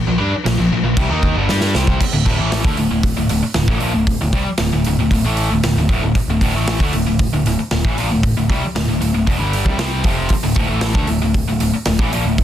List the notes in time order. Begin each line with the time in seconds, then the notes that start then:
0.07 A#1 A#2 F3
0.19 G2 G3 D4
0.33 muted distorted electric guitar stroke, muted picked electric bass stroke
0.45 A#1 A#2 F3, snare, crash
0.58 A#1 A#2 F3
0.71 A#1 A#2 F3
0.84 A#1 A#2 F3
0.97 C2 C3 G3, kick, crash
1.09 D#2 D#3 A#3 D#4
1.23 kick
1.36 G1 G2 D3
1.49 G2 G3 D4 G4, snare
1.61 snare
1.75 C2 C3 G3 C4, snare
1.87 kick
2.01 muted picked electric bass stroke, muted distorted electric guitar stroke, kick, crash
2.13 D1 D2 A2
2.25 D1 D2 A2, kick, open hi-hat
2.38 A1 A2 E3 A3
2.52 snare, open hi-hat
2.65 D2 D3 A3, kick
2.77 D1 D2 A2, open hi-hat
2.91 D1 D2 A2
3.03 kick, open hi-hat
3.17 D1 D2 A2
3.29 D1 D2 A2, open hi-hat
3.43 muted distorted electric guitar stroke, muted picked electric bass stroke
3.54 D1 D2 A2, snare, open hi-hat
3.68 A1 A2 E3, kick
3.80 A#1 A#2 F3, open hi-hat
3.94 D1 D2 A2
4.07 kick, open hi-hat
4.21 D1 D2 A2
4.33 C2 C3 G3, kick, open hi-hat
4.46 muted distorted electric guitar stroke, muted picked electric bass stroke
4.58 D1 D2 A2, snare, open hi-hat
4.72 D1 D2 A2
4.84 D1 D2 A2, open hi-hat
4.98 D1 D2 A2
5.11 D1 D2 A2, kick, open hi-hat
5.24 A1 A2 E3 A3
5.37 open hi-hat
5.51 D1 D2 A2
5.63 D1 D2 A2, snare, open hi-hat
5.76 D1 D2 A2
5.89 D1 D2 A2, kick, open hi-hat
6.02 D1 D2 A2
6.15 muted picked electric bass stroke, muted distorted electric guitar stroke, kick, open hi-hat
6.28 D1 D2 A2
6.41 D1 D2 A2, kick, open hi-hat
6.55 A1 A2 E3 A3
6.67 snare, open hi-hat
6.80 D2 D3 A3, kick
6.93 D1 D2 A2, open hi-hat
7.07 D1 D2 A2
7.19 kick, open hi-hat
7.32 D1 D2 A2
7.45 D1 D2 A2, open hi-hat
7.59 muted distorted electric guitar stroke, muted picked electric bass stroke
7.71 D1 D2 A2, snare, open hi-hat
7.85 A1 A2 E3, kick
7.97 A#1 A#2 F3, open hi-hat
8.11 D1 D2 A2
8.23 kick, open hi-hat
8.37 D1 D2 A2
8.49 C2 C3 G3, kick, open hi-hat
8.63 muted picked electric bass stroke, muted distorted electric guitar stroke
8.75 D1 D2 A2, snare, open hi-hat
8.88 D1 D2 A2
9.00 D1 D2 A2, open hi-hat
9.14 D1 D2 A2
9.27 E1 E2 B2, kick, open hi-hat
9.38 G1 G2 D3 G3
9.53 open hi-hat
9.65 C2 C3 G3, kick
9.78 C2 C3 G3 C4, snare, open hi-hat
10.04 F1 F2 C3 F3, kick, open hi-hat
10.29 muted picked electric bass stroke, muted distorted electric guitar stroke, kick, open hi-hat
10.43 D1 D2 A2
10.55 D1 D2 A2, kick, open hi-hat
10.68 A1 A2 E3 A3
10.81 snare, open hi-hat
10.94 D2 D3 A3, kick
11.07 D1 D2 A2, open hi-hat
11.21 D1 D2 A2
11.34 kick, open hi-hat
11.48 D1 D2 A2
11.60 D1 D2 A2, open hi-hat
11.74 muted distorted electric guitar stroke, muted picked electric bass stroke
11.86 D1 D2 A2, snare, open hi-hat
11.99 A1 A2 E3, kick
12.13 A#1 A#2 F3, open hi-hat
12.25 D1 D2 A2
12.38 kick, open hi-hat